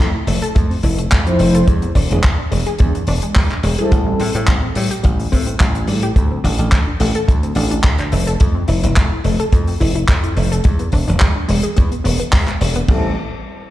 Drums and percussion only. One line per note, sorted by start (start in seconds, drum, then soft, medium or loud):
0.00 kick loud
0.27 open hi-hat loud
0.44 closed hi-hat medium
0.56 kick loud
0.56 closed hi-hat medium
0.71 open hi-hat medium
0.83 kick medium
0.83 open hi-hat loud
0.99 closed hi-hat medium
1.11 kick loud
1.11 clap loud
1.11 closed hi-hat medium
1.27 closed hi-hat medium
1.39 open hi-hat loud
1.55 closed hi-hat medium
1.68 kick loud
1.68 closed hi-hat medium
1.82 closed hi-hat medium
1.95 kick medium
1.95 open hi-hat loud
2.11 closed hi-hat medium
2.24 kick loud
2.24 clap loud
2.24 closed hi-hat medium
2.52 open hi-hat loud
2.66 closed hi-hat medium
2.79 kick loud
2.79 closed hi-hat medium
2.95 closed hi-hat soft
3.07 open hi-hat loud
3.22 closed hi-hat medium
3.35 kick loud
3.35 clap loud
3.35 open hi-hat medium
3.51 clap soft
3.51 closed hi-hat medium
3.63 open hi-hat loud
3.78 closed hi-hat medium
3.92 kick loud
3.92 closed hi-hat medium
4.20 open hi-hat loud
4.35 closed hi-hat medium
4.47 kick loud
4.47 clap loud
4.47 closed hi-hat medium
4.75 open hi-hat loud
4.91 closed hi-hat medium
5.04 kick loud
5.04 closed hi-hat medium
5.20 open hi-hat medium
5.32 kick medium
5.32 open hi-hat loud
5.47 closed hi-hat medium
5.60 kick loud
5.60 clap loud
5.60 closed hi-hat medium
5.75 closed hi-hat soft
5.87 open hi-hat loud
6.02 closed hi-hat medium
6.16 kick loud
6.16 closed hi-hat medium
6.44 kick medium
6.44 open hi-hat loud
6.58 closed hi-hat medium
6.72 kick loud
6.72 clap loud
6.72 closed hi-hat medium
7.00 open hi-hat loud
7.15 closed hi-hat medium
7.28 kick loud
7.28 closed hi-hat medium
7.43 closed hi-hat medium
7.55 open hi-hat loud
7.71 closed hi-hat medium
7.84 kick loud
7.84 clap loud
7.84 closed hi-hat medium
7.98 clap soft
7.98 closed hi-hat medium
8.12 open hi-hat loud
8.27 closed hi-hat medium
8.40 kick loud
8.40 closed hi-hat medium
8.68 open hi-hat loud
8.84 closed hi-hat medium
8.96 kick loud
8.96 clap loud
8.96 closed hi-hat medium
9.24 open hi-hat loud
9.40 closed hi-hat medium
9.52 kick loud
9.52 closed hi-hat medium
9.67 open hi-hat medium
9.81 kick medium
9.81 open hi-hat loud
9.96 closed hi-hat medium
10.08 kick loud
10.08 clap loud
10.08 closed hi-hat medium
10.23 closed hi-hat medium
10.37 open hi-hat loud
10.52 closed hi-hat medium
10.64 kick loud
10.64 closed hi-hat medium
10.79 closed hi-hat soft
10.92 kick medium
10.92 open hi-hat loud
11.08 closed hi-hat medium
11.20 kick loud
11.20 clap loud
11.20 closed hi-hat medium
11.49 open hi-hat loud
11.63 closed hi-hat medium
11.77 kick loud
11.77 closed hi-hat medium
11.92 closed hi-hat medium
12.05 open hi-hat loud
12.20 closed hi-hat medium
12.33 kick loud
12.33 clap loud
12.33 open hi-hat medium
12.48 clap soft
12.48 closed hi-hat medium
12.61 open hi-hat loud
12.75 closed hi-hat medium
12.88 kick loud
12.88 crash medium